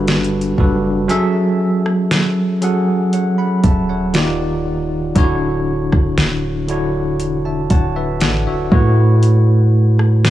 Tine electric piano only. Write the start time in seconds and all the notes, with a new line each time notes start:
Already playing: G3 D4 F#4 A4 B4
0.58 G3 D4 F#4 A4 B4
1.08 F#3 C#4 G#4 A4 E5
2.61 F#3 C#4 G#4 A4 F#5
3.13 C#5 F#5
3.38 F#5 B5
3.64 E5 A5
3.89 C#5 F#5
4.13 D#3 D#4 F4 G4 D5
5.15 D3 D4 E4 F#4 C#5
6.68 D3 D4 E4 F#4 C#5
7.45 E5 A5
7.71 C#5 F#5 A5
7.96 B4 E5
8.22 A4 D5 F#5
8.47 F#4 C#5 E5
8.71 A3 E4 F#4 B4 C#5